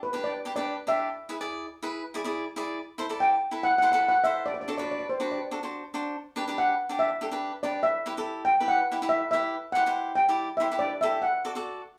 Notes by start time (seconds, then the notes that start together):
0.03 B4
0.13 D4 G4 B4
0.24 D5
0.45 D4 G4 B4
0.56 D4 G4 B4 D5
0.87 D4 G4 D5 E5
1.29 E4 G#4 B4
1.41 E4 G#4 D5
1.82 E4 G#4 B4
2.14 E4 G#4 D5
2.24 E4 G#4 D5
2.56 E4 G#4 D5
2.98 E4 A4 C5
3.09 E4 A4 D5
3.20 G5
3.51 E4 A4 B4
3.63 F#5
3.71 F#5
3.78 E4 F#5
3.83 A4 C5 F#5
3.92 E4 A4 B4 F#5
4.01 F#5
4.08 F#5
4.14 F#5
4.24 E4 A4 C5 E5
4.46 D5
4.54 D5
4.61 D5
4.68 D4 F#4 A4 D5
4.77 D4 F#4 B4 D5
4.84 D5
4.91 D5
4.99 D5
5.09 C5
5.20 D4 F#4 B4
5.32 D5
5.51 D4 F#4 A4
5.63 D4 F#4 C5
5.94 D4 F#4 C5
6.36 D4 G4 B4
6.48 D4 G4 B4
6.58 F#5
6.89 D4 G4 D5
6.99 E5
7.21 D4 G4 A4
7.31 D4 G4 B4
7.63 D4 G4 B4 D5
7.83 E5
8.06 E4 G4 B4
8.17 E4 G4 A4
8.45 G5
8.60 E4 G4 B4
8.68 F#5
8.92 E4 G4 B4
9.02 E4 G4 B4
9.09 E5
9.31 E4 G4 B4 E5
9.72 E4 G4 C5 F#5
9.86 E4 G4 C5
10.15 G5
10.29 E4 G4 D5
10.57 E4 G4 E5
10.61 C5
10.72 E4 G4 B4
10.79 D5
11.01 E4 G4 A4 E5
11.22 F#5
11.45 F#4 A4 D5
11.55 F#4 A4 D5